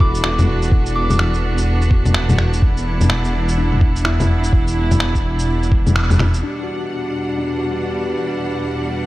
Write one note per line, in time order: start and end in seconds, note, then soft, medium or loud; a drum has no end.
0.00 6.42 E1 medium
0.00 6.39 B3 medium
0.00 6.39 D4 medium
0.00 0.83 E4 medium
0.00 2.58 F#4 medium
0.00 0.94 A4 soft
0.00 6.45 F#5 medium
0.00 0.48 D6 medium
0.00 kick loud
0.15 shaker medium
0.24 finger snap loud
0.39 low bongo medium
0.39 shaker soft
0.62 shaker soft
0.72 kick loud
0.86 shaker soft
0.96 1.05 D6 medium
1.10 1.16 D6 medium
1.10 low bongo medium
1.10 shaker soft
1.19 finger snap loud
1.34 shaker soft
1.58 shaker medium
1.82 shaker soft
1.91 kick loud
2.05 low bongo soft
2.05 shaker medium
2.14 finger snap loud
2.29 low bongo medium
2.29 shaker soft
2.38 finger snap medium
2.53 shaker soft
2.62 6.39 E4 medium
2.62 kick loud
2.77 shaker soft
3.01 low bongo medium
3.01 shaker medium
3.10 finger snap loud
3.25 shaker soft
3.49 shaker medium
3.58 4.64 D4 soft
3.72 low bongo soft
3.81 kick loud
3.96 shaker medium
4.05 5.11 E4 medium
4.05 finger snap loud
4.20 low bongo medium
4.20 shaker soft
4.44 shaker medium
4.53 kick loud
4.68 shaker soft
4.91 low bongo medium
4.91 shaker medium
5.00 finger snap loud
5.15 kick medium
5.15 shaker soft
5.39 shaker medium
5.63 shaker soft
5.72 kick loud
5.87 low bongo medium
5.87 shaker medium
5.96 finger snap loud
6.10 low bongo medium
6.10 shaker soft
6.19 finger snap medium
6.19 low bongo medium
6.34 shaker medium
6.43 9.06 E2 medium
6.43 9.06 B2 medium
6.43 9.06 G3 medium
6.43 9.06 D4 medium
6.43 7.37 D4 medium
6.43 9.06 B4 medium
6.43 9.06 F#5 medium
6.63 7.57 F#4 soft
7.38 8.45 D4 medium
7.58 8.56 F#4 soft
7.72 8.73 G4 soft